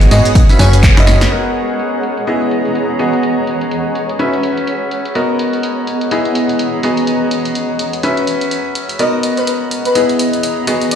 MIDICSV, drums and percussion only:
0, 0, Header, 1, 2, 480
1, 0, Start_track
1, 0, Key_signature, 5, "major"
1, 0, Tempo, 480000
1, 1313, Time_signature, 4, 2, 24, 8
1, 10953, End_track
2, 0, Start_track
2, 0, Title_t, "Drums"
2, 14, Note_on_c, 9, 42, 38
2, 16, Note_on_c, 9, 38, 45
2, 16, Note_on_c, 9, 82, 35
2, 110, Note_off_c, 9, 38, 0
2, 110, Note_on_c, 9, 38, 34
2, 113, Note_on_c, 9, 46, 99
2, 114, Note_off_c, 9, 42, 0
2, 116, Note_off_c, 9, 82, 0
2, 121, Note_on_c, 9, 42, 61
2, 210, Note_off_c, 9, 38, 0
2, 213, Note_off_c, 9, 46, 0
2, 221, Note_off_c, 9, 42, 0
2, 253, Note_on_c, 9, 42, 55
2, 255, Note_on_c, 9, 82, 68
2, 353, Note_off_c, 9, 42, 0
2, 353, Note_on_c, 9, 36, 112
2, 353, Note_on_c, 9, 42, 82
2, 355, Note_off_c, 9, 82, 0
2, 355, Note_on_c, 9, 82, 55
2, 356, Note_off_c, 9, 42, 0
2, 356, Note_on_c, 9, 42, 83
2, 453, Note_off_c, 9, 36, 0
2, 455, Note_off_c, 9, 82, 0
2, 456, Note_off_c, 9, 42, 0
2, 494, Note_on_c, 9, 46, 61
2, 496, Note_on_c, 9, 82, 33
2, 593, Note_off_c, 9, 46, 0
2, 593, Note_on_c, 9, 46, 101
2, 594, Note_on_c, 9, 42, 81
2, 596, Note_off_c, 9, 82, 0
2, 596, Note_on_c, 9, 38, 107
2, 693, Note_off_c, 9, 46, 0
2, 694, Note_off_c, 9, 42, 0
2, 696, Note_off_c, 9, 38, 0
2, 734, Note_on_c, 9, 42, 57
2, 736, Note_on_c, 9, 82, 68
2, 833, Note_off_c, 9, 42, 0
2, 833, Note_on_c, 9, 36, 110
2, 833, Note_on_c, 9, 42, 76
2, 835, Note_off_c, 9, 42, 0
2, 835, Note_off_c, 9, 82, 0
2, 835, Note_on_c, 9, 39, 112
2, 835, Note_on_c, 9, 42, 54
2, 835, Note_on_c, 9, 82, 52
2, 933, Note_off_c, 9, 36, 0
2, 935, Note_off_c, 9, 39, 0
2, 935, Note_off_c, 9, 42, 0
2, 935, Note_off_c, 9, 82, 0
2, 973, Note_on_c, 9, 26, 77
2, 973, Note_on_c, 9, 42, 38
2, 975, Note_on_c, 9, 82, 35
2, 977, Note_on_c, 9, 38, 98
2, 979, Note_off_c, 9, 42, 0
2, 979, Note_on_c, 9, 42, 79
2, 1072, Note_off_c, 9, 38, 0
2, 1072, Note_on_c, 9, 38, 60
2, 1072, Note_on_c, 9, 46, 103
2, 1073, Note_off_c, 9, 26, 0
2, 1075, Note_off_c, 9, 82, 0
2, 1079, Note_off_c, 9, 42, 0
2, 1172, Note_off_c, 9, 38, 0
2, 1172, Note_off_c, 9, 46, 0
2, 1213, Note_on_c, 9, 38, 71
2, 1213, Note_on_c, 9, 42, 54
2, 1215, Note_on_c, 9, 82, 69
2, 1313, Note_off_c, 9, 38, 0
2, 1313, Note_off_c, 9, 42, 0
2, 1313, Note_on_c, 9, 42, 78
2, 1315, Note_off_c, 9, 82, 0
2, 1413, Note_off_c, 9, 42, 0
2, 1554, Note_on_c, 9, 42, 73
2, 1654, Note_off_c, 9, 42, 0
2, 1694, Note_on_c, 9, 42, 49
2, 1794, Note_off_c, 9, 42, 0
2, 1794, Note_on_c, 9, 42, 73
2, 1894, Note_off_c, 9, 42, 0
2, 2033, Note_on_c, 9, 42, 72
2, 2133, Note_off_c, 9, 42, 0
2, 2174, Note_on_c, 9, 42, 50
2, 2273, Note_off_c, 9, 42, 0
2, 2273, Note_on_c, 9, 42, 70
2, 2373, Note_off_c, 9, 42, 0
2, 2414, Note_on_c, 9, 42, 36
2, 2513, Note_off_c, 9, 42, 0
2, 2513, Note_on_c, 9, 42, 73
2, 2613, Note_off_c, 9, 42, 0
2, 2654, Note_on_c, 9, 42, 49
2, 2753, Note_off_c, 9, 42, 0
2, 2753, Note_on_c, 9, 42, 70
2, 2853, Note_off_c, 9, 42, 0
2, 2993, Note_on_c, 9, 42, 75
2, 3093, Note_off_c, 9, 42, 0
2, 3134, Note_on_c, 9, 42, 48
2, 3233, Note_off_c, 9, 42, 0
2, 3233, Note_on_c, 9, 42, 76
2, 3333, Note_off_c, 9, 42, 0
2, 3474, Note_on_c, 9, 42, 69
2, 3574, Note_off_c, 9, 42, 0
2, 3614, Note_on_c, 9, 42, 47
2, 3714, Note_off_c, 9, 42, 0
2, 3714, Note_on_c, 9, 42, 73
2, 3814, Note_off_c, 9, 42, 0
2, 3954, Note_on_c, 9, 42, 71
2, 4054, Note_off_c, 9, 42, 0
2, 4094, Note_on_c, 9, 42, 48
2, 4194, Note_off_c, 9, 42, 0
2, 4194, Note_on_c, 9, 42, 69
2, 4294, Note_off_c, 9, 42, 0
2, 4334, Note_on_c, 9, 42, 33
2, 4434, Note_off_c, 9, 42, 0
2, 4434, Note_on_c, 9, 42, 73
2, 4534, Note_off_c, 9, 42, 0
2, 4575, Note_on_c, 9, 42, 49
2, 4674, Note_off_c, 9, 42, 0
2, 4674, Note_on_c, 9, 42, 68
2, 4774, Note_off_c, 9, 42, 0
2, 4914, Note_on_c, 9, 42, 73
2, 5014, Note_off_c, 9, 42, 0
2, 5054, Note_on_c, 9, 42, 47
2, 5153, Note_off_c, 9, 42, 0
2, 5153, Note_on_c, 9, 42, 72
2, 5253, Note_off_c, 9, 42, 0
2, 5393, Note_on_c, 9, 42, 68
2, 5493, Note_off_c, 9, 42, 0
2, 5534, Note_on_c, 9, 42, 46
2, 5633, Note_off_c, 9, 42, 0
2, 5633, Note_on_c, 9, 42, 68
2, 5733, Note_off_c, 9, 42, 0
2, 5873, Note_on_c, 9, 42, 67
2, 5973, Note_off_c, 9, 42, 0
2, 6014, Note_on_c, 9, 42, 48
2, 6113, Note_off_c, 9, 42, 0
2, 6113, Note_on_c, 9, 42, 69
2, 6213, Note_off_c, 9, 42, 0
2, 6254, Note_on_c, 9, 42, 33
2, 6353, Note_off_c, 9, 42, 0
2, 6353, Note_on_c, 9, 42, 71
2, 6453, Note_off_c, 9, 42, 0
2, 6494, Note_on_c, 9, 42, 47
2, 6593, Note_off_c, 9, 42, 0
2, 6593, Note_on_c, 9, 42, 67
2, 6693, Note_off_c, 9, 42, 0
2, 6833, Note_on_c, 9, 42, 68
2, 6933, Note_off_c, 9, 42, 0
2, 6974, Note_on_c, 9, 42, 44
2, 7073, Note_off_c, 9, 42, 0
2, 7073, Note_on_c, 9, 42, 68
2, 7173, Note_off_c, 9, 42, 0
2, 7313, Note_on_c, 9, 42, 66
2, 7413, Note_off_c, 9, 42, 0
2, 7454, Note_on_c, 9, 42, 45
2, 7553, Note_off_c, 9, 42, 0
2, 7553, Note_on_c, 9, 42, 69
2, 7653, Note_off_c, 9, 42, 0
2, 7793, Note_on_c, 9, 42, 69
2, 7893, Note_off_c, 9, 42, 0
2, 7934, Note_on_c, 9, 42, 46
2, 8033, Note_off_c, 9, 42, 0
2, 8033, Note_on_c, 9, 42, 66
2, 8133, Note_off_c, 9, 42, 0
2, 8174, Note_on_c, 9, 42, 30
2, 8274, Note_off_c, 9, 42, 0
2, 8274, Note_on_c, 9, 42, 70
2, 8374, Note_off_c, 9, 42, 0
2, 8414, Note_on_c, 9, 42, 46
2, 8513, Note_off_c, 9, 42, 0
2, 8513, Note_on_c, 9, 42, 66
2, 8613, Note_off_c, 9, 42, 0
2, 8753, Note_on_c, 9, 42, 67
2, 8853, Note_off_c, 9, 42, 0
2, 8894, Note_on_c, 9, 42, 46
2, 8993, Note_off_c, 9, 42, 0
2, 8993, Note_on_c, 9, 42, 72
2, 9093, Note_off_c, 9, 42, 0
2, 9233, Note_on_c, 9, 42, 66
2, 9333, Note_off_c, 9, 42, 0
2, 9374, Note_on_c, 9, 42, 46
2, 9473, Note_off_c, 9, 42, 0
2, 9473, Note_on_c, 9, 42, 70
2, 9573, Note_off_c, 9, 42, 0
2, 9713, Note_on_c, 9, 42, 72
2, 9813, Note_off_c, 9, 42, 0
2, 9854, Note_on_c, 9, 42, 44
2, 9954, Note_off_c, 9, 42, 0
2, 9954, Note_on_c, 9, 42, 68
2, 10054, Note_off_c, 9, 42, 0
2, 10094, Note_on_c, 9, 42, 31
2, 10194, Note_off_c, 9, 42, 0
2, 10194, Note_on_c, 9, 42, 72
2, 10294, Note_off_c, 9, 42, 0
2, 10334, Note_on_c, 9, 42, 47
2, 10434, Note_off_c, 9, 42, 0
2, 10434, Note_on_c, 9, 42, 66
2, 10534, Note_off_c, 9, 42, 0
2, 10674, Note_on_c, 9, 42, 71
2, 10774, Note_off_c, 9, 42, 0
2, 10815, Note_on_c, 9, 42, 46
2, 10914, Note_off_c, 9, 42, 0
2, 10914, Note_on_c, 9, 42, 74
2, 10953, Note_off_c, 9, 42, 0
2, 10953, End_track
0, 0, End_of_file